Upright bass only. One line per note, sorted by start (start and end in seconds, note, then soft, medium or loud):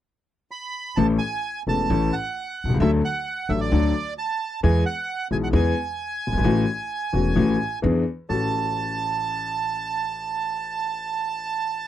0.97 1.17 A1 medium
1.67 1.86 E1 medium
1.90 2.09 A1 medium
2.64 2.69 B1 soft
2.69 2.74 C2 medium
2.75 2.80 C#2 medium
2.80 3.00 D2 medium
3.49 3.69 A1 medium
3.72 3.91 D2 medium
4.64 4.82 E2 medium
5.31 5.50 B1 medium
5.53 5.72 E2 loud
6.28 6.32 F#1 soft
6.33 6.38 G1 medium
6.39 6.44 G#1 medium
6.44 6.63 A1 medium
7.13 7.32 E1 medium
7.37 7.56 A1 medium
7.84 8.03 E2 medium
8.30 8.49 A1 soft